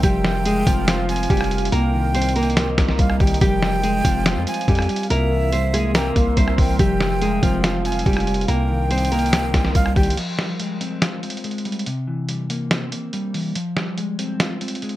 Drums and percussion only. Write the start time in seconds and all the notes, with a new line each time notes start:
0.03 kick, closed hi-hat
0.24 snare
0.45 closed hi-hat
0.67 kick, closed hi-hat
0.88 snare, closed hi-hat
1.09 closed hi-hat
1.16 closed hi-hat
1.23 closed hi-hat
1.30 kick, closed hi-hat
1.37 cross-stick, closed hi-hat
1.44 closed hi-hat
1.51 closed hi-hat
1.58 closed hi-hat
1.65 closed hi-hat
1.72 closed hi-hat
2.15 closed hi-hat
2.22 closed hi-hat
2.29 closed hi-hat
2.36 closed hi-hat
2.43 closed hi-hat
2.50 closed hi-hat
2.57 snare, closed hi-hat
2.78 kick, snare, closed hi-hat
2.88 snare
2.99 kick, closed hi-hat
3.10 cross-stick
3.20 kick, closed hi-hat
3.27 closed hi-hat
3.34 closed hi-hat
3.41 kick, closed hi-hat
3.62 snare
3.83 closed hi-hat
4.05 kick, closed hi-hat
4.26 snare, closed hi-hat
4.47 closed hi-hat
4.54 closed hi-hat
4.61 closed hi-hat
4.68 kick, closed hi-hat
4.75 cross-stick, closed hi-hat
4.82 closed hi-hat
4.89 closed hi-hat
4.96 closed hi-hat
5.03 closed hi-hat
5.10 closed hi-hat
5.53 closed hi-hat
5.74 closed hi-hat
5.95 snare, closed hi-hat
6.16 kick, closed hi-hat
6.37 kick, closed hi-hat
6.48 cross-stick
6.58 kick, open hi-hat
6.79 kick, closed hi-hat
7.00 snare
7.22 closed hi-hat
7.43 kick, closed hi-hat
7.64 snare, closed hi-hat
7.85 closed hi-hat
7.92 closed hi-hat
7.99 closed hi-hat
8.06 kick, closed hi-hat
8.13 cross-stick, closed hi-hat
8.20 closed hi-hat
8.27 closed hi-hat
8.34 closed hi-hat
8.41 closed hi-hat
8.48 closed hi-hat
8.91 closed hi-hat
8.98 closed hi-hat
9.05 closed hi-hat
9.12 closed hi-hat
9.19 closed hi-hat
9.26 closed hi-hat
9.33 snare, closed hi-hat
9.54 kick, snare, closed hi-hat
9.65 snare
9.75 kick, closed hi-hat
9.86 cross-stick
9.96 kick, closed hi-hat
10.03 closed hi-hat
10.10 closed hi-hat
10.17 closed hi-hat, crash
10.39 snare
10.60 closed hi-hat
10.81 closed hi-hat
11.02 snare, closed hi-hat
11.23 closed hi-hat
11.30 closed hi-hat
11.37 closed hi-hat
11.44 closed hi-hat
11.51 closed hi-hat
11.58 closed hi-hat
11.65 closed hi-hat
11.72 closed hi-hat
11.79 closed hi-hat
11.86 closed hi-hat
12.29 closed hi-hat
12.50 closed hi-hat
12.71 snare, closed hi-hat
12.92 closed hi-hat
13.13 closed hi-hat
13.34 open hi-hat
13.55 closed hi-hat
13.77 snare
13.98 closed hi-hat
14.19 closed hi-hat
14.40 snare, closed hi-hat
14.61 closed hi-hat
14.68 closed hi-hat
14.75 closed hi-hat
14.82 closed hi-hat
14.89 closed hi-hat